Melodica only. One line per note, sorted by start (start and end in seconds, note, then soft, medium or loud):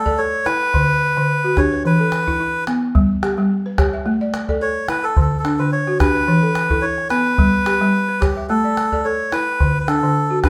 0.00 0.20 A4 loud
0.18 0.47 C#5 medium
0.45 1.60 B4 loud
1.58 1.83 C#5 medium
1.86 2.64 B4 loud
4.62 4.87 C#5 medium
4.89 5.04 B4 medium
5.03 5.20 A4 medium
5.21 5.38 A4 medium
5.39 5.60 A4 medium
5.59 5.71 B4 medium
5.72 5.98 C#5 medium
6.00 6.85 B4 loud
6.82 7.08 C#5 medium
7.10 8.24 B4 medium
8.20 8.47 G4 medium
8.49 9.06 A4 loud
9.05 9.33 C#5 medium
9.32 9.79 B4 loud
9.80 9.87 B4 medium
9.88 10.39 A4 loud
10.44 10.49 B4 loud